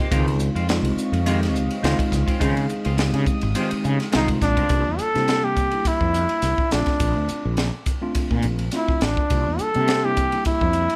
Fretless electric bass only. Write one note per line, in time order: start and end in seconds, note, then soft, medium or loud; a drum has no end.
0.12 0.49 C#2 medium
0.55 0.79 F2 medium
0.83 0.94 C2 medium
0.97 muted fretless electric bass stroke soft
1.12 1.55 F2 medium
1.55 1.68 C#2 medium
1.84 1.96 C#2 medium
1.99 muted fretless electric bass stroke soft
2.13 2.25 C#2 medium
2.28 muted fretless electric bass stroke soft
2.41 2.65 C#3 medium
2.86 3.09 C#2 medium
3.14 3.25 C#3 medium
3.27 muted fretless electric bass stroke soft
3.43 3.54 G#1 medium
3.72 muted fretless electric bass stroke soft
3.85 3.97 C#3 medium
4.15 4.38 C2 medium
4.42 4.55 A#1 medium
4.57 4.69 C2 medium
4.70 4.83 C2 medium
4.88 4.98 E2 medium
5.01 muted fretless electric bass stroke soft
5.16 5.75 C3 medium
5.85 muted fretless electric bass stroke soft
6.01 6.25 F2 medium
6.42 6.56 C2 medium
6.73 6.85 A#1 medium
7.00 7.13 A#1 medium
7.16 7.27 D2 medium
7.30 muted fretless electric bass stroke soft
7.45 7.69 A#1 medium
8.31 8.46 A#2 medium
8.44 8.68 A#1 medium
9.02 9.15 A1 medium
9.31 9.44 C2 medium
9.46 9.58 E2 medium
9.60 muted fretless electric bass stroke soft
9.76 10.35 C3 medium
10.46 muted fretless electric bass stroke soft
10.62 10.86 F2 medium